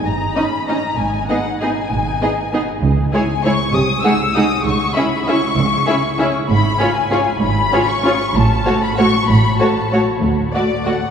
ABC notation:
X:1
M:3/4
L:1/8
Q:1/4=194
K:G#m
V:1 name="Violin section"
a2 b2 a2 | g2 f2 g2- | g4- g z | z2 g2 c'2 |
d'2 e'2 d'2 | c'2 b2 c'2- | c'4- c' z | [K:F#m] b3 g3 |
b3 c'3 | a3 b c'2 | b2 a3 z | z2 d2 f2 |]
V:2 name="Violin section"
z2 [Dd]2 [Dd]2 | z2 [Gd]2 [Gd]2 | z2 [Gd]2 [Gd]2 | z2 [Gc]2 [Gc]2 |
z2 [Gf]2 [Gf]2 | z2 [Ge]2 [Ge]2 | z2 [Ge]2 [Ge]2 | [K:F#m] z2 [Gc]2 [Gc]2 |
z2 [Gc]2 [Gc]2 | z2 [Fc]2 [Fc]2 | z2 [Fc]2 [Fc]2 | z2 [Fd]2 [Fd]2 |]
V:3 name="Viola section"
z2 [CD]2 [CD]2 | z2 [B,D]2 [B,D]2 | z2 [B,D]2 [B,D]2 | z2 [G,E]2 [G,E]2 |
z2 [G,D]2 [G,D]2 | z2 [CE]2 [CE]2 | z2 [CE]2 [CE]2 | [K:F#m] z2 [C^E]2 [CE]2 |
z2 [C^E]2 [CE]2 | z2 [A,F]2 [A,F]2 | z2 [A,F]2 [A,F]2 | z2 [A,F]2 [A,F]2 |]
V:4 name="Cello section" clef=bass
=G,,2 z4 | G,,2 z4 | G,,2 z4 | C,2 z4 |
^B,,2 z4 | C,2 z4 | C,2 z4 | [K:F#m] G,,2 z4 |
G,,2 z4 | A,,2 z4 | A,,2 z4 | D,,2 z4 |]
V:5 name="Double bass section" clef=bass
=G,,,2 z4 | G,,,2 z4 | G,,,2 z4 | C,,2 z4 |
^B,,,2 z4 | C,,2 z4 | C,,2 z4 | [K:F#m] G,,,2 z4 |
G,,,2 z4 | A,,,2 z4 | A,,,2 z4 | D,,2 z4 |]